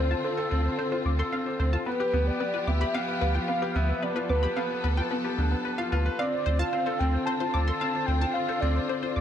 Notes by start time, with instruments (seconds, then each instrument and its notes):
Already playing: sub bass D2, string section D3 C4 F4, felt piano C4 F4 A4 C5, soft synth lead C5
0.10 felt piano F4, synth arpeggio sound A5
0.24 felt piano C4, soft synth lead A4, synth arpeggio sound C5
0.37 felt piano A4, synth arpeggio sound C5
0.51 sub bass D2, felt piano C4
0.65 felt piano C5
0.79 felt piano C4, synth arpeggio sound C5
0.92 felt piano F4, synth arpeggio sound C5
1.05 sub bass D2, felt piano C4, synth arpeggio sound D6
1.19 felt piano A4, synth arpeggio sound C6
1.32 felt piano C4, synth arpeggio sound F5
1.46 felt piano C5
1.59 sub bass D2, felt piano C4, synth arpeggio sound C5
1.73 felt piano F4, synth arpeggio sound A5
1.86 string section F3 B3 G4, felt piano B3, synth arpeggio sound B4, soft synth lead B4
2.00 felt piano G4, synth arpeggio sound B4
2.13 sub bass D2, felt piano B3
2.27 felt piano B4, soft synth lead D5
2.40 felt piano B3, synth arpeggio sound B4
2.54 felt piano F4, synth arpeggio sound B4
2.67 sub bass D2, felt piano B3, soft synth lead E5, synth arpeggio sound D6
2.81 felt piano G4, synth arpeggio sound B5
2.94 felt piano B3, synth arpeggio sound F5, soft synth lead F5
3.08 felt piano B4
3.21 sub bass D2, felt piano B3, synth arpeggio sound B4
3.35 felt piano F4, synth arpeggio sound G5
3.48 felt piano B3, synth arpeggio sound B4, soft synth lead F5
3.62 felt piano G4, synth arpeggio sound B4
3.76 sub bass D2, felt piano B3, soft synth lead E5
3.89 felt piano B4
4.02 felt piano B3, string section A4, synth arpeggio sound B4, soft synth lead D5
4.16 felt piano F4, synth arpeggio sound B4
4.29 sub bass D2, felt piano B3, soft synth lead B4, synth arpeggio sound D6
4.43 felt piano G4, synth arpeggio sound B5
4.57 felt piano B3, synth arpeggio sound F5
4.71 felt piano B4
4.84 sub bass D2, felt piano B3, synth arpeggio sound B4
4.97 felt piano F4, synth arpeggio sound G5
5.11 felt piano B3, synth arpeggio sound B4
5.24 felt piano G4, synth arpeggio sound B4
5.38 sub bass D2, felt piano D4
5.51 felt piano B3
5.65 felt piano B4, synth arpeggio sound B4
5.78 felt piano F4, synth arpeggio sound F5
5.92 sub bass D2, felt piano F4, synth arpeggio sound B4
6.06 felt piano B4
6.19 string section D3 C4 F4, felt piano C4, soft synth lead D5, synth arpeggio sound F5
6.33 felt piano C5
6.46 sub bass D2, felt piano C4, synth arpeggio sound C5
6.59 felt piano F4, soft synth lead F5, synth arpeggio sound A5
6.73 felt piano C4, synth arpeggio sound C5
6.86 felt piano A4, synth arpeggio sound C5
6.99 sub bass D2, felt piano C4, soft synth lead G5
7.14 felt piano C5
7.26 felt piano C4, synth arpeggio sound C5, soft synth lead A5
7.40 felt piano F4, synth arpeggio sound C5
7.54 sub bass D2, felt piano C4, synth arpeggio sound D6
7.68 felt piano A4, synth arpeggio sound C6
7.80 felt piano C4, synth arpeggio sound F5, soft synth lead A5
7.95 felt piano C5
8.06 sub bass D2, felt piano C4, synth arpeggio sound C5, soft synth lead G5
8.21 felt piano F4, synth arpeggio sound A5
8.34 felt piano C4, synth arpeggio sound C5, soft synth lead F5
8.49 felt piano A4, synth arpeggio sound C5
8.61 sub bass D2, felt piano C4, soft synth lead D5
8.76 felt piano C5
8.89 felt piano C4, synth arpeggio sound C5
9.03 felt piano F4, synth arpeggio sound C5
9.16 sub bass D2, felt piano C4, synth arpeggio sound D6